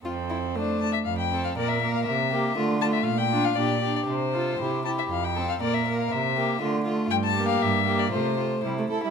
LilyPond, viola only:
\new Staff \with { instrumentName = "Viola" } { \time 2/4 \key f \major \tempo 4 = 118 c'4 a8 r8 | r8 c'8 bes8 bes8 | r8 bes8 a8 a8 | r8 d'8 d'8 d'8 |
r8 f'8 e'8 e'8 | r8 c'8 bes8 bes8 | r8 bes8 a8 a8 | r8 bes4 bes8 |
a8 a8 g16 a8 g16 | }